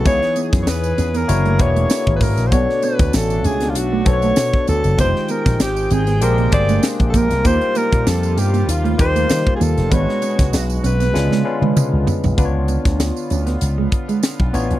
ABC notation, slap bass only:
X:1
M:4/4
L:1/16
Q:"Swing 16ths" 1/4=97
K:C#phr
V:1 name="Slap bass" clef=bass
C,, z2 F,, E,,2 E,,2 F,,,2 E,,,2 z G,,, G,,, ^A,,, | B,,, z2 D,, A,,,2 C,,2 B,,,2 B,,,2 B,, z D,, F,,, | =F,,, z2 ^A,,, _A,,,2 A,,,2 ^A,,,2 =G,,,2 z A,,, A,,, ^B,,, | ^D,, z2 ^A,, ^E,,2 =G,,2 D,,2 D,,2 ^D, z D,, ^E,,, |
G,,, z2 C,, B,,,2 B,,,2 C,, C, z C, C, C,, z B,,, | C,,3 D,,2 z D,,2 C,,2 z3 B,,, A,,, B,,, |]